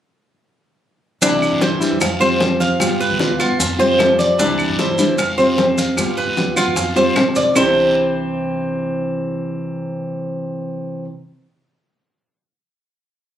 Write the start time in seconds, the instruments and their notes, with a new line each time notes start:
1.22 upright bass C2, nylon-string guitar C3 E3 G3 D4 E4, cuban tres D4, high bongo, high conga, long guiro, maracas
1.42 high conga, claves, maracas
1.52 upright bass G2
1.60 nylon-string guitar E3 G3 D4 E4, cuban tres C5, high bongo, high conga, short guiro, maracas
1.80 nylon-string guitar E3 G3 D4 E4, high conga, short guiro, maracas
1.91 upright bass E2
2.01 upright bass F2, cuban tres F5, muted nylon-string guitar stroke, high bongo, high conga, long guiro, claves, maracas
2.20 nylon-string guitar G3 C4 F4, cuban tres C5, high conga, maracas
2.40 nylon-string guitar F3 G3 C4 F4, high bongo, low bongo, high conga, short guiro, maracas
2.60 cuban tres F5, high conga, short guiro, maracas
2.80 upright bass G2, nylon-string guitar G3 B3 F4, high bongo, high conga, long guiro, claves, maracas
3.00 cuban tres B4, high bongo, high conga, maracas
3.10 upright bass D2
3.19 nylon-string guitar G3 B3 F4, high bongo, high conga, short guiro, maracas
3.39 nylon-string guitar B3 F4, cuban tres F4, high bongo, high conga, short guiro, claves, maracas
3.50 upright bass G2
3.59 upright bass F2, muted nylon-string guitar stroke, high bongo, high conga, long guiro, maracas
3.79 nylon-string guitar G3 C4 F4, cuban tres C5, high bongo, high conga, maracas
3.99 nylon-string guitar F3 G3 C4 F4, high bongo, low bongo, high conga, short guiro, claves, maracas
4.19 cuban tres D5, high conga, short guiro, maracas
4.38 upright bass C2, nylon-string guitar C3 E3 G3 D4 E4, cuban tres D4, high bongo, high conga, long guiro, maracas
4.59 high conga, claves, maracas
4.69 upright bass G2
4.78 nylon-string guitar E3 G3 D4 E4, cuban tres C5, high bongo, high conga, short guiro, maracas
4.98 nylon-string guitar E3 G3 D4 E4, high conga, short guiro, maracas
5.09 upright bass C2
5.18 upright bass F2, cuban tres F5, muted nylon-string guitar stroke, high bongo, high conga, long guiro, claves, maracas
5.38 nylon-string guitar G3 C4 F4, cuban tres C5, high conga, maracas
5.57 nylon-string guitar F3 G3 C4 F4, high bongo, low bongo, high conga, short guiro, maracas
5.78 cuban tres F5, high conga, short guiro, maracas
5.96 upright bass G2, nylon-string guitar G3 B3 F4, high bongo, high conga, long guiro, claves, maracas
6.17 cuban tres B4, high bongo, high conga, maracas
6.27 upright bass D2
6.36 nylon-string guitar G3 B3 F4, high bongo, high conga, short guiro, maracas
6.56 nylon-string guitar B3 F4, cuban tres F4, high bongo, high conga, short guiro, claves, maracas
6.67 upright bass G2
6.76 upright bass F2, muted nylon-string guitar stroke, high bongo, long guiro, maracas
6.96 nylon-string guitar G3 C4 F4, cuban tres C5, high bongo, maracas
7.16 upright bass D2, nylon-string guitar F3 G3 C4 F4, high bongo, low bongo, low conga, short guiro, claves, maracas
7.36 upright bass C2, cuban tres D5, low conga, short guiro, maracas
7.55 upright bass C2, nylon-string guitar C3 E3 G3 D4 E4, cuban tres C4 G4 C5, low bongo, low conga, long guiro, claves, maracas